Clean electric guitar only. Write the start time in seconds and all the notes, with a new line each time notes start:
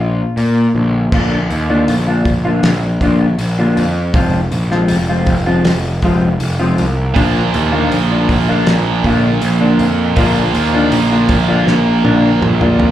Already playing: A#2
0.00 F4
0.38 A#3
0.76 D3
1.13 D3 A#3 D4 F4
1.70 D3 A#3 D4 F4
2.08 D3 A#3 D4 F4
2.45 D3 A#3 D4 F4
3.02 D3 A#3 D4 F4
3.59 D3 A#3 D4 F4
4.15 F3 G#3 C4 F4
4.71 F3 G#3 C4 F4
5.09 F3 G#3 C4 F4
5.47 F3 G#3 C4 F4
6.04 F3 G#3 C4 F4
6.59 F3 G#3 C4 F4
7.16 D3 A#3 D4 F4
7.72 D3 A#3 D4 F4
8.11 D3 A#3 D4 F4
8.49 D3 A#3 D4 F4
9.04 D3 A#3 D4 F4
9.61 D3 A#3 D4 F4
10.17 D3 A#3 D4 F4
10.74 D3 A#3 D4 F4
11.11 D3 A#3 D4 F4
11.48 D3 A#3 D4 F4
12.04 D3 A#3 D4 F4
12.61 D3 A#3 D4 F4